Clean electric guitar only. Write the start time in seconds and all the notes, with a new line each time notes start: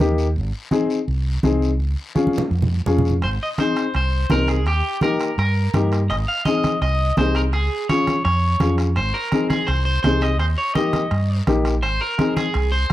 3.23 C5
3.43 D#5
3.60 C5
3.96 C5
4.32 A#4
4.49 G#4
4.67 G4
5.03 A#4
5.39 A#4
6.10 D#5
6.28 F5
6.45 D#5
6.82 D#5
7.18 C5
7.36 A#4
7.54 G#4
7.89 C#5
8.25 C#5
8.97 C5
9.14 A#4
9.50 G#4
9.67 C5
9.85 C5
10.03 C5
10.22 D#5
10.40 C5
10.58 C#5
10.76 D#5
11.82 C5
12.01 A#4
12.37 G#4
12.72 C5